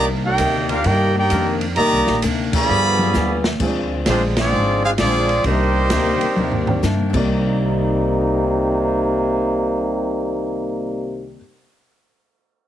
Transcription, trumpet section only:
0, 0, Header, 1, 2, 480
1, 0, Start_track
1, 0, Key_signature, -3, "minor"
1, 0, Tempo, 460123
1, 1848, Time_signature, 4, 2, 24, 8
1, 13227, End_track
2, 0, Start_track
2, 0, Title_t, "Trumpet section"
2, 0, Program_c, 0, 61
2, 262, Note_on_c, 0, 63, 84
2, 268, Note_on_c, 0, 70, 84
2, 270, Note_on_c, 0, 74, 79
2, 270, Note_on_c, 0, 79, 99
2, 703, Note_off_c, 0, 63, 0
2, 706, Note_off_c, 0, 70, 0
2, 707, Note_off_c, 0, 74, 0
2, 708, Note_off_c, 0, 79, 0
2, 748, Note_on_c, 0, 70, 78
2, 750, Note_on_c, 0, 77, 91
2, 753, Note_on_c, 0, 62, 77
2, 756, Note_on_c, 0, 67, 77
2, 887, Note_off_c, 0, 70, 0
2, 887, Note_off_c, 0, 77, 0
2, 889, Note_off_c, 0, 62, 0
2, 891, Note_off_c, 0, 67, 0
2, 897, Note_on_c, 0, 74, 88
2, 898, Note_on_c, 0, 70, 89
2, 904, Note_on_c, 0, 63, 80
2, 904, Note_on_c, 0, 79, 102
2, 1215, Note_off_c, 0, 70, 0
2, 1215, Note_off_c, 0, 74, 0
2, 1218, Note_off_c, 0, 63, 0
2, 1218, Note_off_c, 0, 79, 0
2, 1229, Note_on_c, 0, 79, 87
2, 1233, Note_on_c, 0, 74, 78
2, 1235, Note_on_c, 0, 70, 70
2, 1237, Note_on_c, 0, 63, 73
2, 1616, Note_off_c, 0, 79, 0
2, 1618, Note_off_c, 0, 74, 0
2, 1619, Note_off_c, 0, 70, 0
2, 1620, Note_off_c, 0, 63, 0
2, 1846, Note_on_c, 0, 82, 122
2, 1847, Note_on_c, 0, 74, 109
2, 1850, Note_on_c, 0, 67, 109
2, 1850, Note_on_c, 0, 75, 98
2, 2293, Note_off_c, 0, 74, 0
2, 2293, Note_off_c, 0, 82, 0
2, 2295, Note_off_c, 0, 67, 0
2, 2295, Note_off_c, 0, 75, 0
2, 2648, Note_on_c, 0, 68, 111
2, 2651, Note_on_c, 0, 74, 101
2, 2651, Note_on_c, 0, 77, 101
2, 2655, Note_on_c, 0, 83, 127
2, 3566, Note_off_c, 0, 68, 0
2, 3567, Note_off_c, 0, 74, 0
2, 3567, Note_off_c, 0, 77, 0
2, 3569, Note_off_c, 0, 83, 0
2, 4264, Note_on_c, 0, 72, 85
2, 4266, Note_on_c, 0, 56, 84
2, 4268, Note_on_c, 0, 65, 78
2, 4270, Note_on_c, 0, 62, 78
2, 4405, Note_off_c, 0, 72, 0
2, 4406, Note_off_c, 0, 56, 0
2, 4408, Note_off_c, 0, 65, 0
2, 4409, Note_off_c, 0, 62, 0
2, 4586, Note_on_c, 0, 60, 93
2, 4588, Note_on_c, 0, 65, 89
2, 4588, Note_on_c, 0, 68, 82
2, 4589, Note_on_c, 0, 74, 102
2, 5024, Note_off_c, 0, 60, 0
2, 5024, Note_off_c, 0, 65, 0
2, 5025, Note_off_c, 0, 68, 0
2, 5025, Note_off_c, 0, 74, 0
2, 5053, Note_on_c, 0, 72, 78
2, 5055, Note_on_c, 0, 62, 85
2, 5056, Note_on_c, 0, 77, 99
2, 5057, Note_on_c, 0, 68, 84
2, 5123, Note_off_c, 0, 72, 0
2, 5124, Note_off_c, 0, 62, 0
2, 5125, Note_off_c, 0, 77, 0
2, 5126, Note_off_c, 0, 68, 0
2, 5211, Note_on_c, 0, 68, 84
2, 5215, Note_on_c, 0, 74, 102
2, 5216, Note_on_c, 0, 60, 88
2, 5217, Note_on_c, 0, 65, 89
2, 5654, Note_off_c, 0, 68, 0
2, 5657, Note_off_c, 0, 60, 0
2, 5657, Note_off_c, 0, 74, 0
2, 5658, Note_off_c, 0, 65, 0
2, 5693, Note_on_c, 0, 63, 90
2, 5693, Note_on_c, 0, 67, 94
2, 5696, Note_on_c, 0, 72, 102
2, 5698, Note_on_c, 0, 58, 89
2, 7087, Note_off_c, 0, 63, 0
2, 7087, Note_off_c, 0, 67, 0
2, 7088, Note_off_c, 0, 72, 0
2, 7089, Note_off_c, 0, 58, 0
2, 13227, End_track
0, 0, End_of_file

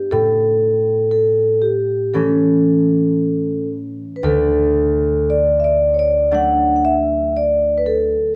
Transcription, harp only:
0, 0, Header, 1, 2, 480
1, 0, Start_track
1, 0, Key_signature, 2, "major"
1, 0, Tempo, 1013514
1, 56, Time_signature, 4, 2, 24, 8
1, 1017, Tempo, 1039861
1, 2937, Tempo, 1013514
1, 3907, End_track
2, 0, Start_track
2, 0, Title_t, "Harp"
2, 0, Program_c, 0, 46
2, 0, Note_on_c, 0, 55, 35
2, 0, Note_on_c, 0, 59, 35
2, 0, Note_on_c, 0, 62, 42
2, 57, Note_on_c, 0, 45, 49
2, 80, Note_off_c, 0, 55, 0
2, 442, Note_off_c, 0, 62, 0
2, 578, Note_off_c, 0, 59, 0
2, 1013, Note_on_c, 0, 52, 34
2, 1015, Note_on_c, 0, 57, 30
2, 1018, Note_on_c, 0, 61, 38
2, 1881, Note_off_c, 0, 45, 0
2, 1978, Note_on_c, 0, 38, 47
2, 2003, Note_off_c, 0, 52, 0
2, 2006, Note_off_c, 0, 61, 0
2, 2552, Note_off_c, 0, 57, 0
2, 2939, Note_on_c, 0, 54, 34
2, 2941, Note_on_c, 0, 57, 34
2, 2944, Note_on_c, 0, 62, 41
2, 3800, Note_off_c, 0, 38, 0
2, 3907, Note_off_c, 0, 54, 0
2, 3907, Note_off_c, 0, 57, 0
2, 3907, Note_off_c, 0, 62, 0
2, 3907, End_track
0, 0, End_of_file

